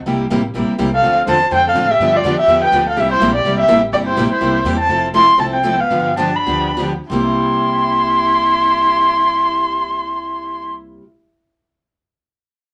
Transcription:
0.06 upright bass C2, steel-string acoustic guitar C3 G3 A#3 E4 G4
0.30 upright bass A1, steel-string acoustic guitar C3 G3 A#3 E4 G4
0.54 upright bass A#1, steel-string acoustic guitar C3 G3 A#3 E4 G4
0.69 muted upright bass stroke
0.79 upright bass C2, steel-string acoustic guitar C3 G3 A#3 E4 G4
0.93 violin A4, erhu F5
1.02 upright bass D2, steel-string acoustic guitar D3 F3 A3 C4 D4 F4 A4
1.26 upright bass E2, steel-string acoustic guitar D3 F3 A3 C4 D4 F4 A4, violin C5, erhu A5
1.51 upright bass F2, steel-string acoustic guitar D3 F3 A3 C4 D4 F4 A4, violin C5, erhu G5
1.66 violin A4, erhu F5
1.74 upright bass A2, steel-string acoustic guitar D3 F3 A3 C4 D4 F4 A4
1.90 violin G4, erhu E5
1.99 upright bass G2, steel-string acoustic guitar D3 F3 B3 D4 G4
2.15 violin F4, erhu D5
2.24 upright bass F2, steel-string acoustic guitar D3 F3 B3 D4 G4
2.39 violin G4, erhu E5
2.47 upright bass E2, steel-string acoustic guitar D3 F3 B3 D4 G4
2.63 violin B4, erhu G5
2.72 upright bass D2, steel-string acoustic guitar D3 F3 B3 D4 G4
2.86 violin A4, erhu F5
2.97 upright bass C2, steel-string acoustic guitar C3 G3 A#3 E4 G4, violin G4, erhu E5
3.12 violin E4, erhu C5
3.20 upright bass A#1, steel-string acoustic guitar C3 G3 A#3 E4 G4
3.33 violin G4, erhu D5
3.44 upright bass C2, steel-string acoustic guitar C3 G3 A#3 E4 G4
3.59 violin G4, erhu E5
3.68 upright bass A1, steel-string acoustic guitar C3 G3 A#3 E4 G4
3.92 upright bass G1, steel-string acoustic guitar C3 G3 A#3 E4 G4, violin G4, erhu D5
4.06 violin E4, erhu C5
4.17 upright bass A#1, steel-string acoustic guitar C3 G3 A#3 E4 G4
4.31 violin E4, erhu C5, muted upright bass stroke
4.41 upright bass C2, steel-string acoustic guitar C3 G3 A#3 E4 G4
4.64 upright bass E2, steel-string acoustic guitar C3 G3 A#3 E4 G4
4.79 violin C4, erhu A5
4.89 upright bass F1, steel-string acoustic guitar F3 A3 C4 E4 A4
5.14 steel-string acoustic guitar F3 A3 C4 E4 A4, violin E4, erhu C6
5.37 upright bass C2, steel-string acoustic guitar F3 A3 C4 E4 A4, violin C4, erhu A5
5.52 violin C4, erhu G5
5.65 steel-string acoustic guitar F3 A3 C4 E4 A4
5.77 violin B3, erhu F5
5.91 upright bass G1, steel-string acoustic guitar D3 F3 B3 D4 G4
6.17 steel-string acoustic guitar D3 F3 B3 D4 G4, violin D4, erhu A5
6.35 violin D4, erhu B5
6.47 upright bass D2, steel-string acoustic guitar D3 F3 B3 D4 G4
6.80 steel-string acoustic guitar D3 F3 B3 D4 G4
7.10 upright bass C2, steel-string acoustic guitar C3 G3 A#3 E4, violin E4, erhu C6
7.15 steel-string acoustic guitar G4

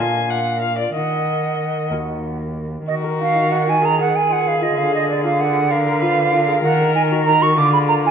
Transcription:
Already playing: cello A#2, violin G#5
0.00 lute A#2 A#3 D4 F4, flute F5
0.30 violin F#5
0.61 violin F5
0.78 violin D5
0.94 cello D#3, lute D#3, violin D#5, flute F#5
1.91 cello D#2, lute D#2 A#3 D#4 F#4
2.87 cello D#3, lute D#3, violin F#4, flute D#5
3.04 lute A#4
3.21 lute D#4, flute F5
3.36 lute F#4
3.51 lute D#4, flute F#5
3.68 lute F#4, flute G#5
3.82 violin G#4, flute A#5
3.99 lute G#4, flute F#5
4.14 lute B3, flute G#5
4.30 lute F4, flute F#5
4.46 lute B3, flute F5
4.61 lute F4, flute D#5
4.76 cello D3, lute D3, flute F5
4.92 lute G#4, flute D#5
5.07 lute A#3, flute D5
5.24 lute F4, flute F5
5.38 lute A#3, flute F#5
5.55 lute F4
5.70 lute G#4, violin A#4, flute F5
5.87 lute A#4
6.01 lute F4, violin B4
6.18 lute A#3
6.32 lute F4, violin A#4
6.48 lute G#4
6.63 cello D#3, lute D#3, flute F#5
6.81 lute A#4
6.95 lute D#4, flute G#5
7.12 lute F#4
7.26 lute D#4, flute A#5
7.42 lute F#4, flute C#6
7.56 cello D3, lute D3, violin F4, flute D6
7.73 lute G#4, flute B5
7.88 lute A#3, flute A#5
8.04 lute F4, flute G#5

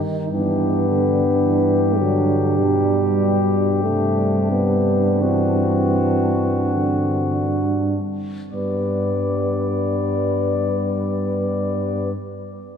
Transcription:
Already playing: trombone D#3, french horn section D#4
0.31 tuba G2, trombone E3, euphonium B3, french horn section D4, flugelhorn G4
0.89 trombone D3
1.44 trombone E3
1.99 trombone D3, euphonium F#3
2.58 trombone B2, euphonium G3
3.84 tuba G2, trombone C3, euphonium A3, french horn section D4
4.51 euphonium B3
5.22 trombone E3, euphonium C4, flugelhorn F#4
6.75 trombone D3
8.52 tuba G2, trombone G3, euphonium B3, french horn section B4, flugelhorn D5

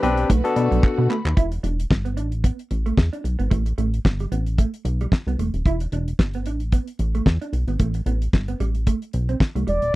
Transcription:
Already playing: string section D3 C4 G4 B4
0.03 analog synth bass B1, clean electric guitar B3, tine electric piano C4 D4 G4 B4, closed hi-hat
0.17 closed hi-hat
0.29 analog synth bass B1, clean electric guitar A3, string section A3 F#4, kick, closed hi-hat
0.44 tine electric piano B3 D4 F#4 A4, closed hi-hat
0.56 analog synth bass B2, tine electric piano D5, muted clean electric guitar stroke, closed hi-hat
0.71 analog synth bass B1, clean electric guitar F#3, closed hi-hat
0.83 tine electric piano F#5, muted clean electric guitar stroke, kick, clap
0.98 analog synth bass B2, clean electric guitar B3
1.10 clean electric guitar A3, tine electric piano B5, clap
1.25 analog synth bass D#2, clap
1.37 analog synth bass E1, clean electric guitar E4, kick, closed hi-hat
1.52 muted clean electric guitar stroke, closed hi-hat
1.63 analog synth bass E1, clean electric guitar D4, closed hi-hat
1.80 closed hi-hat
1.90 analog synth bass G1, muted clean electric guitar stroke, kick, snare, clap
2.05 clean electric guitar B3, closed hi-hat
2.17 analog synth bass A1, clean electric guitar D4, closed hi-hat
2.32 closed hi-hat
2.44 clean electric guitar B3, kick, closed hi-hat
2.59 closed hi-hat
2.71 analog synth bass A1, muted clean electric guitar stroke, closed hi-hat
2.86 clean electric guitar A3, closed hi-hat
2.97 analog synth bass E2, kick, snare, clap
3.13 clean electric guitar D4, closed hi-hat
3.24 analog synth bass B1, muted clean electric guitar stroke, closed hi-hat
3.39 analog synth bass G#1, clean electric guitar B3, closed hi-hat
3.51 analog synth bass A1, clean electric guitar A3, kick, closed hi-hat
3.66 muted clean electric guitar stroke, closed hi-hat
3.78 analog synth bass A1, clean electric guitar A3, closed hi-hat
3.94 closed hi-hat
4.05 analog synth bass G1, muted clean electric guitar stroke, kick, snare, clap
4.20 clean electric guitar G3, closed hi-hat
4.32 analog synth bass A1, clean electric guitar B3, closed hi-hat
4.46 closed hi-hat
4.58 clean electric guitar A3, kick, closed hi-hat
4.74 closed hi-hat
4.85 analog synth bass B1, muted clean electric guitar stroke, closed hi-hat
5.01 clean electric guitar G3, closed hi-hat
5.12 muted clean electric guitar stroke, kick, snare, clap
5.27 analog synth bass C2, clean electric guitar B3, closed hi-hat
5.38 analog synth bass E1, clean electric guitar A3, closed hi-hat
5.54 analog synth bass D#1, closed hi-hat
5.66 analog synth bass E1, clean electric guitar E4, kick, closed hi-hat
5.80 muted clean electric guitar stroke, closed hi-hat
5.92 analog synth bass E1, clean electric guitar D4, closed hi-hat
6.08 closed hi-hat
6.19 analog synth bass G1, muted clean electric guitar stroke, kick, snare, clap
6.34 clean electric guitar B3, closed hi-hat
6.46 analog synth bass A1, clean electric guitar D4, closed hi-hat
6.60 closed hi-hat
6.72 clean electric guitar B3, kick, closed hi-hat
6.88 closed hi-hat
6.99 analog synth bass A1, muted clean electric guitar stroke, closed hi-hat
7.15 clean electric guitar A3, closed hi-hat
7.26 analog synth bass E2, kick, snare, clap
7.42 clean electric guitar D4, closed hi-hat
7.53 analog synth bass B1, muted clean electric guitar stroke, closed hi-hat
7.67 analog synth bass G#1, clean electric guitar B3, closed hi-hat
7.79 analog synth bass A1, clean electric guitar A3, kick, closed hi-hat
7.94 muted clean electric guitar stroke, closed hi-hat
8.06 analog synth bass A1, clean electric guitar B3, closed hi-hat
8.22 closed hi-hat
8.33 analog synth bass G1, muted clean electric guitar stroke, kick, snare, clap
8.48 clean electric guitar B3, closed hi-hat
8.60 analog synth bass A1, clean electric guitar G3, closed hi-hat
8.75 closed hi-hat
8.87 clean electric guitar A3, kick, closed hi-hat
9.02 closed hi-hat
9.13 analog synth bass B1, muted clean electric guitar stroke, closed hi-hat
9.29 clean electric guitar C4, closed hi-hat
9.40 muted clean electric guitar stroke, kick, snare, clap
9.55 analog synth bass C2, clean electric guitar A3, closed hi-hat
9.67 analog synth bass E1, clean electric guitar G3, analog synth lead D5, closed hi-hat
9.82 analog synth bass D#1, closed hi-hat

